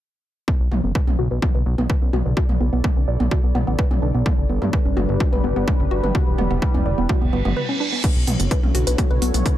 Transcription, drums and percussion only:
0.48 kick loud
0.71 mid tom medium
0.95 kick loud
1.07 mid tom medium
1.42 kick loud
1.42 mid tom medium
1.78 mid tom medium
1.90 kick loud
2.13 mid tom medium
2.37 kick loud
2.49 mid tom medium
2.84 kick loud
2.84 mid tom medium
3.20 mid tom medium
3.31 kick loud
3.55 mid tom medium
3.79 kick loud
3.91 mid tom medium
4.26 kick loud
4.26 mid tom medium
4.62 mid tom medium
4.73 kick loud
4.97 mid tom medium
5.20 kick loud
5.33 mid tom medium
5.68 kick loud
5.68 mid tom medium
6.04 mid tom medium
6.15 kick loud
6.39 mid tom medium
6.62 kick loud
6.74 mid tom medium
7.09 kick loud
7.09 mid tom medium
7.45 mid tom medium
8.04 kick loud
8.04 closed hi-hat medium
8.04 crash medium
8.27 mid tom medium
8.27 open hi-hat loud
8.40 closed hi-hat medium
8.51 kick loud
8.51 closed hi-hat medium
8.63 mid tom medium
8.75 open hi-hat loud
8.87 closed hi-hat medium
8.98 kick loud
8.98 closed hi-hat medium
8.98 mid tom medium
9.22 open hi-hat loud
9.34 closed hi-hat medium
9.34 mid tom medium
9.46 kick loud
9.46 closed hi-hat medium

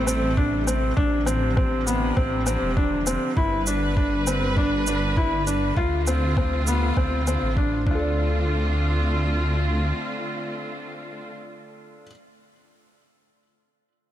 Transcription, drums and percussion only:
0.08 shaker medium
0.37 kick medium
0.68 shaker medium
0.97 kick loud
1.27 shaker medium
1.57 kick loud
1.87 shaker medium
2.17 kick medium
2.47 shaker medium
2.77 kick medium
3.07 shaker medium
3.37 kick loud
3.67 shaker medium
3.97 kick medium
4.27 shaker medium
4.57 kick medium
4.87 shaker medium
5.17 kick medium
5.47 shaker medium
5.77 kick medium
6.07 shaker medium
6.37 kick medium
6.67 shaker medium
6.97 kick medium
7.27 shaker medium
7.57 kick medium
7.87 kick medium

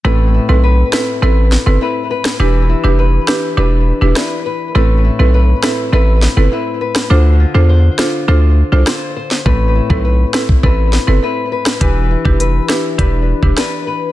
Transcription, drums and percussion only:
0.93 cross-stick medium
0.93 snare loud
1.52 snare medium
2.25 cross-stick medium
2.25 snare loud
3.28 cross-stick medium
3.28 snare loud
4.16 cross-stick loud
4.16 snare loud
5.63 cross-stick medium
5.63 snare loud
6.22 snare medium
6.95 cross-stick medium
6.95 snare loud
7.98 cross-stick medium
7.98 snare loud
8.87 cross-stick medium
8.87 snare loud
9.31 snare medium
9.46 kick loud
9.90 kick loud
10.34 cross-stick medium
10.34 snare loud
10.49 kick medium
10.63 kick medium
10.93 snare medium
11.66 cross-stick medium
11.66 snare loud
11.81 kick loud
11.81 closed hi-hat medium
12.25 kick loud
12.40 closed hi-hat medium
12.69 cross-stick medium
12.69 snare loud
12.99 kick medium
12.99 closed hi-hat medium
13.43 kick medium
13.57 cross-stick medium
13.57 snare loud
13.57 closed hi-hat medium

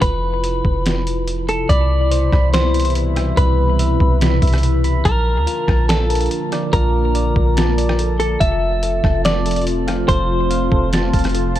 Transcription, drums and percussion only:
0.02 kick loud
0.02 closed hi-hat medium
0.44 closed hi-hat medium
0.65 kick loud
0.86 snare loud
0.86 closed hi-hat medium
1.07 closed hi-hat medium
1.28 closed hi-hat medium
1.49 closed hi-hat medium
1.70 kick loud
1.70 closed hi-hat medium
2.12 closed hi-hat medium
2.33 kick loud
2.33 cross-stick medium
2.54 snare loud
2.54 closed hi-hat medium
2.74 closed hi-hat medium
2.80 closed hi-hat medium
2.85 closed hi-hat medium
2.90 closed hi-hat soft
2.95 closed hi-hat medium
3.16 cross-stick medium
3.16 closed hi-hat medium
3.37 kick loud
3.37 closed hi-hat medium
3.79 closed hi-hat loud
4.00 kick loud
4.21 snare loud
4.21 closed hi-hat medium
4.42 kick medium
4.42 closed hi-hat medium
4.47 closed hi-hat medium
4.53 cross-stick loud
4.53 closed hi-hat medium
4.58 closed hi-hat soft
4.63 closed hi-hat medium
4.84 closed hi-hat medium
5.05 kick loud
5.05 closed hi-hat medium
5.47 closed hi-hat loud
5.68 kick loud
5.68 cross-stick medium
5.89 snare loud
5.89 closed hi-hat medium
6.10 closed hi-hat medium
6.15 closed hi-hat medium
6.21 closed hi-hat medium
6.26 closed hi-hat soft
6.31 closed hi-hat medium
6.52 cross-stick medium
6.52 closed hi-hat medium
6.73 kick loud
6.73 closed hi-hat medium
7.15 closed hi-hat medium
7.36 kick loud
7.57 snare loud
7.57 closed hi-hat medium
7.78 closed hi-hat medium
7.89 cross-stick loud
7.99 closed hi-hat medium
8.20 closed hi-hat medium
8.41 kick loud
8.41 closed hi-hat medium
8.83 closed hi-hat medium
9.04 kick loud
9.04 cross-stick medium
9.25 snare loud
9.25 closed hi-hat medium
9.46 closed hi-hat medium
9.51 closed hi-hat medium
9.56 closed hi-hat medium
9.61 closed hi-hat soft
9.67 closed hi-hat medium
9.88 cross-stick loud
9.88 closed hi-hat medium
10.09 kick loud
10.09 closed hi-hat medium
10.51 closed hi-hat loud
10.72 kick loud
10.93 snare loud
10.93 closed hi-hat medium
11.13 kick medium
11.13 closed hi-hat medium
11.19 closed hi-hat medium
11.24 cross-stick loud
11.24 closed hi-hat medium
11.29 closed hi-hat soft
11.35 closed hi-hat medium
11.56 closed hi-hat medium

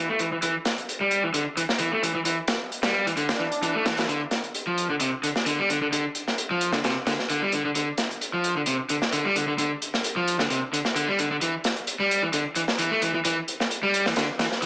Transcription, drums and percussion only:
0.19 closed hi-hat medium
0.32 closed hi-hat medium
0.42 closed hi-hat medium
0.42 closed hi-hat soft
0.55 closed hi-hat soft
0.65 snare medium
0.65 closed hi-hat medium
0.77 closed hi-hat medium
0.77 closed hi-hat soft
0.88 closed hi-hat soft
0.88 closed hi-hat medium
1.01 closed hi-hat soft
1.11 closed hi-hat medium
1.23 closed hi-hat medium
1.34 closed hi-hat medium
1.34 closed hi-hat soft
1.47 closed hi-hat soft
1.57 closed hi-hat medium
1.69 snare soft
1.69 closed hi-hat medium
1.78 closed hi-hat medium
1.78 closed hi-hat soft
1.92 closed hi-hat soft
2.03 closed hi-hat medium
2.15 closed hi-hat medium
2.25 closed hi-hat medium
2.25 closed hi-hat soft
2.48 snare loud
2.48 closed hi-hat medium
2.61 closed hi-hat medium
2.72 closed hi-hat medium
2.72 closed hi-hat soft
2.83 snare loud
2.83 closed hi-hat medium
3.07 closed hi-hat medium
3.17 closed hi-hat medium
3.29 snare medium
3.29 closed hi-hat medium
3.52 closed hi-hat medium
3.62 closed hi-hat medium
3.86 snare medium
3.86 closed hi-hat medium
3.97 snare loud
3.97 closed hi-hat medium
4.09 closed hi-hat medium
4.31 snare medium
4.31 closed hi-hat medium
4.44 closed hi-hat soft
4.44 closed hi-hat medium
4.54 closed hi-hat medium
4.54 closed hi-hat soft
4.67 closed hi-hat soft
4.78 closed hi-hat medium
4.90 closed hi-hat medium
5.00 closed hi-hat medium
5.13 closed hi-hat soft
5.23 closed hi-hat medium
5.36 snare soft
5.36 closed hi-hat medium
5.46 closed hi-hat medium
5.70 closed hi-hat medium
5.82 closed hi-hat medium
5.92 closed hi-hat medium
6.05 closed hi-hat soft
6.15 closed hi-hat medium
6.28 snare soft
6.28 closed hi-hat medium
6.38 closed hi-hat medium
6.51 closed hi-hat soft
6.61 closed hi-hat medium
6.73 snare soft
6.73 closed hi-hat medium
6.84 snare loud
6.84 closed hi-hat medium
7.07 snare loud
7.07 closed hi-hat medium
7.19 snare soft
7.19 closed hi-hat medium
7.29 closed hi-hat medium
7.52 closed hi-hat medium
7.65 closed hi-hat medium
7.75 closed hi-hat medium
7.98 snare medium
7.98 closed hi-hat medium
8.10 closed hi-hat medium
8.10 closed hi-hat soft
8.21 closed hi-hat soft
8.21 closed hi-hat medium
8.33 closed hi-hat soft
8.44 closed hi-hat medium
8.56 closed hi-hat medium
8.66 closed hi-hat medium
8.79 closed hi-hat soft
8.89 closed hi-hat medium
9.02 snare soft
9.02 closed hi-hat medium
9.12 closed hi-hat medium
9.25 closed hi-hat soft
9.36 closed hi-hat medium
9.48 closed hi-hat medium
9.58 closed hi-hat medium
9.58 closed hi-hat soft
9.71 closed hi-hat soft
9.82 closed hi-hat medium
9.94 snare soft
9.94 closed hi-hat medium
10.04 closed hi-hat medium
10.04 closed hi-hat soft
10.17 closed hi-hat soft
10.27 closed hi-hat medium
10.39 snare soft
10.39 closed hi-hat medium
10.50 closed hi-hat medium
10.50 closed hi-hat soft
10.62 closed hi-hat soft
10.73 closed hi-hat medium
10.85 snare soft
10.85 closed hi-hat medium
10.96 closed hi-hat medium
10.96 closed hi-hat soft
11.18 closed hi-hat medium
11.31 closed hi-hat medium
11.41 closed hi-hat medium
11.41 closed hi-hat soft
11.54 closed hi-hat soft
11.64 snare medium
11.64 closed hi-hat medium
11.76 closed hi-hat soft
11.76 closed hi-hat medium
11.87 closed hi-hat medium
11.87 closed hi-hat soft
12.00 closed hi-hat soft
12.11 closed hi-hat medium
12.23 closed hi-hat medium
12.33 closed hi-hat medium
12.33 closed hi-hat soft
12.46 closed hi-hat soft
12.55 closed hi-hat medium
12.68 snare soft
12.68 closed hi-hat medium
12.78 closed hi-hat medium
12.78 closed hi-hat soft
12.91 closed hi-hat soft
13.02 closed hi-hat medium
13.14 closed hi-hat medium
13.25 closed hi-hat medium
13.25 closed hi-hat soft
13.48 closed hi-hat medium
13.60 snare soft
13.60 closed hi-hat medium
13.71 closed hi-hat soft
13.71 closed hi-hat medium
13.83 closed hi-hat soft
13.94 closed hi-hat medium
14.06 snare soft
14.06 closed hi-hat medium
14.16 snare medium
14.16 closed hi-hat medium
14.29 closed hi-hat soft
14.39 snare loud
14.39 closed hi-hat medium
14.52 snare soft
14.52 closed hi-hat medium
14.62 closed hi-hat medium
14.62 closed hi-hat soft

